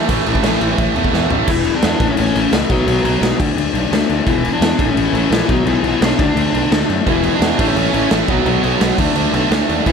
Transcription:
0.08 A1 A2 E3 A3, kick, crash
0.25 A1 A2 E3 A3, crash
0.35 kick
0.42 A1 A2 E3 A3, snare, crash
0.61 A1 A2 E3 A3, crash
0.78 A1 A2 E3 A3, kick, crash
0.96 E2 A2 E3 A3, crash
1.04 kick
1.13 E2 A2 E3 A3, snare
1.30 A1 A2 E3 A3, floor tom
1.47 E1 E2 B2 E3 E4, kick, crash
1.65 E2 B2 E3, crash
1.75 D4 D5
1.82 E2 B2 E3, snare, crash
2.00 A1 A2 E3 A3, kick, crash
2.08 C#4 C#5
2.17 A1 A2 E3 A3 C#4 C#5, crash
2.35 A1 A2 E3 A3, crash
2.52 C#2 A2 E3 A3, snare, crash
2.69 B1 B2 F#3 B3 F#4, kick, crash
2.87 B1 B2 F#3 B3, crash
3.04 B1 B2 F#3 B3, crash
3.21 B1 B2 F#3 B3, snare, crash
3.39 D2 D3 A3 D4, kick, crash
3.56 D2 D3 A3 D4, crash
3.73 B1 D3 A3 D4, crash
3.92 D2 D3 A3 D4, snare, crash
4.08 D2 D3 A3 D4, crash
4.26 E1 E2 B2 E3 E4, kick, crash
4.43 E2 B2 E3, crash
4.53 D4 D5
4.60 E2 B2 E3, snare, crash
4.79 A1 A2 E3 A3, kick, crash
4.88 C#4 C#5
4.96 A1 A2 E3 A3, crash
5.13 A1 A2 E3 A3, crash
5.30 A#1 A2 E3 A3 E4, snare, crash
5.48 B1 B2 F#3 B3 F#4, kick, crash
5.66 B1 B2 E3 F#3 B3 E4, crash
5.83 B1 B2 F#3 B3, crash
6.01 B1 B2 F#3 B3 D4 D5, snare, crash
6.18 D2 D3 A3 D4 D5, kick, crash
6.35 D2 D3 A3 D4, crash
6.53 B1 D3 A3 D4, crash
6.70 D2 D3 A3 D4, snare, crash
6.87 F#2 D3 A3 D4, crash
7.05 E1 E2 B2 E3, kick, crash
7.10 E4
7.23 E2 B2 E3, crash
7.34 D4 D5
7.40 E2 B2 E3, snare, crash
7.50 D4 D5
7.58 A1 A2 E3 A3, kick, crash
7.68 C#4 C#5
7.75 A1 A2 E3 A3 C#4 C#5, crash
7.93 A1 A2 E3 A3, crash
8.10 A1 A2 E3 A3, snare, crash
8.28 B1 B2 F#3 B3 F#4, kick, crash
8.46 B1 B2 F#3 B3, crash
8.63 B1 B2 F#3 B3, crash
8.80 B1 B2 F#3 B3, snare, crash
8.98 D2 D3 A3 D4, kick, crash
9.15 D2 D3 A3 D4, crash
9.34 B1 D3 A3 D4, crash
9.51 D2 D3 A3 D4, snare, crash
9.68 D#2 D3 A3 D4, crash
9.86 E1 E2 B2 E3 E4, kick, crash

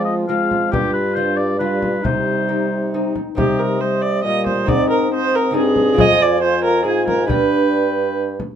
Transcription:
Already playing: F3 G#3 C4 F4
0.05 D#5
0.28 G#3 C4 F4 F5
0.51 frame drum
0.71 G2 G3 F4 G4, frame drum
0.93 B4
1.14 D4 F4 C5
1.37 D5
1.59 G3 D4 F4 B4
1.83 frame drum
2.04 C3 G3 D#4 C5, frame drum
2.49 C4 D#4
2.94 C4 D#4
3.16 frame drum
3.35 C3 G3 C4 D#4 G4 D#5, frame drum
3.59 A#4
3.81 G3 C5 D#5
4.02 D5
4.24 A#2 G3 D#5
4.47 C5, frame drum
4.65 G#2 C4 D#4 G#4 D5 D#5, frame drum
4.90 A#4
5.11 C4 C5 D#5
5.35 A#4
5.51 G2 C4 D#4 G#4
5.55 G2 C4 G#4 D#5
5.76 frame drum
5.94 F2 C4 F4 G#4
5.98 F2 F4 D#5 G#5, frame drum
6.22 D5
6.41 F4 C5 G#5
6.64 A#4
6.84 G#2 F4 G#4 G#5
7.08 A#4, frame drum
7.27 G2 D4 G4 B4 G5, frame drum
8.40 frame drum

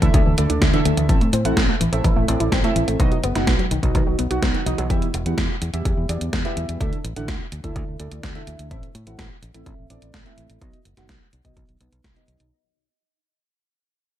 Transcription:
0.02 D2 D3 E3 D4 E4 A4 E5, kick, closed hi-hat
0.14 D2 D3, kick, closed hi-hat
0.26 D2 E3
0.38 D2 D3 A3 D4 E4 A4 D5, closed hi-hat
0.50 D2 D4, closed hi-hat
0.62 D2 A3, kick, snare, closed hi-hat
0.74 D3 E3 D4 E4 A4 E5, closed hi-hat
0.85 D2 D3, closed hi-hat
0.97 D2 E3, closed hi-hat
1.09 A1 A2 E3 C4 E4 A4 E5, kick, closed hi-hat
1.21 A3, closed hi-hat
1.33 A2 C4, closed hi-hat
1.45 A1 A2 C4 E4 A4 F#5, closed hi-hat
1.57 A1 C4, kick, snare, closed hi-hat
1.69 A3
1.81 A1 E3, closed hi-hat
1.92 A1 A2 A3 C4 E4 A4 E5, closed hi-hat
2.04 A1 E3, kick, closed hi-hat
2.16 A1 A3
2.28 A1 A2 C4 E4 A4 D5, closed hi-hat
2.40 A1 E4, closed hi-hat
2.52 A1 C4, kick, snare, closed hi-hat
2.64 A2 A3 C4 E4 A4 E5, closed hi-hat
2.76 A1 E3, closed hi-hat
2.88 A1 A3, closed hi-hat
3.00 B1 B2 D#3 B3 D#4 F#4 D#5, kick, closed hi-hat
3.12 F#3, closed hi-hat
3.23 F#1 B3, closed hi-hat
3.35 F#1 B2 B3 D#4 F#4 F#5, snare, closed hi-hat
3.47 B1 B3, kick, snare, closed hi-hat
3.59 F#3, closed hi-hat
3.71 B1 D#3, closed hi-hat
3.83 B1 B2 F#3 B3 D#4 F#4 D#5, kick, closed hi-hat
3.95 B1 D#3, kick, closed hi-hat
4.07 B1 F#3
4.19 B1 B3, closed hi-hat
4.31 B1 B2 B3 D#4 F#4 F#5, closed hi-hat
4.42 B1 B2 B3 D#4 F#4 F#5, kick, snare, closed hi-hat
4.54 D#3, closed hi-hat
4.66 B1 E3 B3 D#4 F#4 D#5, closed hi-hat
4.78 B1 F#3, closed hi-hat
4.90 E2 E3 B3 E4 G4 E5, kick, closed hi-hat
5.02 closed hi-hat
5.14 E1, closed hi-hat
5.26 E2 E3 B3 E4 G4 F#5, closed hi-hat
5.38 E2, kick, snare, closed hi-hat
5.62 E2, closed hi-hat
5.73 E2 E3 B3 E4 G4 E5, closed hi-hat
5.85 E2, kick, closed hi-hat
5.97 E2
6.09 E2 E3 B3 E4 G4 D5, closed hi-hat
6.21 E2, closed hi-hat
6.33 E2, kick, snare, closed hi-hat
6.45 E3 B3 E4 G4 E5, closed hi-hat
6.57 E2, closed hi-hat
6.69 E2, closed hi-hat
6.81 D2 D3 D4 E4 A4 E5, kick, closed hi-hat
6.93 closed hi-hat
7.04 A1, closed hi-hat
7.16 A1 D3 D4 E4 A4 F#5, closed hi-hat
7.28 D2, kick, snare, closed hi-hat
7.52 D2, closed hi-hat
7.64 D2 D3 D4 E4 A4 E5, kick, closed hi-hat
7.76 D2, kick, closed hi-hat
7.88 D2
8.00 D2 D3 D4 E4 A4 D5, closed hi-hat
8.12 D2, closed hi-hat
8.23 D2, kick, snare, closed hi-hat
8.35 D3 D4 E4 A4 E5, closed hi-hat
8.47 D2, closed hi-hat
8.59 D2, closed hi-hat
8.71 A1 A2 C4 E4 A4 E5, kick, closed hi-hat
8.83 closed hi-hat
8.95 A2, closed hi-hat
9.07 A1 A2 C4 E4 A4 F#5, closed hi-hat
9.19 A1, kick, snare, closed hi-hat
9.42 A1, closed hi-hat
9.54 A1 A2 C4 E4 A4 E5, closed hi-hat
9.66 A1, kick, closed hi-hat
9.78 A1
9.90 A1 A2 C4 E4 A4 D5, closed hi-hat
10.02 A1, closed hi-hat
10.14 A1, kick, snare, closed hi-hat
10.26 A2 C4 E4 A4 E5, closed hi-hat
10.38 A1, closed hi-hat
10.50 A1, closed hi-hat
10.62 B1 B2 B3 D#4 F#4 D#5, kick, closed hi-hat
10.73 closed hi-hat
10.85 F#1, closed hi-hat
10.97 F#1 B2 B3 D#4 F#4 F#5, snare, closed hi-hat
11.09 B1, kick, snare, closed hi-hat
11.33 B1, closed hi-hat
11.45 B1 B2 B3 D#4 F#4 D#5, kick, closed hi-hat
11.57 B1, kick, closed hi-hat
11.69 B1, closed hi-hat
11.80 B1 B2 B3 D#4 F#4 B4, closed hi-hat
11.92 B1, closed hi-hat
12.04 B1, kick, snare, closed hi-hat
12.16 B2 B3 D#4 F#4 D#5, closed hi-hat
12.28 B1, closed hi-hat
12.40 B1, closed hi-hat

